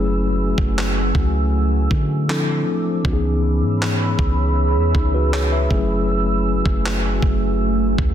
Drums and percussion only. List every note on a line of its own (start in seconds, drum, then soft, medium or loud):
0.58 kick medium
0.78 clap loud
1.15 kick medium
1.91 kick medium
2.30 clap loud
3.05 kick loud
3.82 clap loud
4.19 kick medium
4.95 kick medium
5.34 clap loud
5.71 kick medium
6.66 kick medium
6.86 clap loud
7.22 kick medium
7.98 kick medium